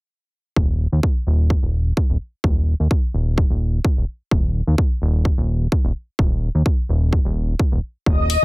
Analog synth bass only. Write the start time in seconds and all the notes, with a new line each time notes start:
0.56 D#1
0.92 D#2
1.27 D#1
1.63 D#1
2.10 D#1
2.44 D#1
2.80 D#2
3.14 D#1
3.50 D#1
3.97 D#1
4.31 D#1
4.67 D#2
5.02 D#1
5.38 D#1
5.84 D#1
6.19 D#1
6.55 D#2
6.89 D#1
7.25 D#1
7.72 D#1
8.06 D#1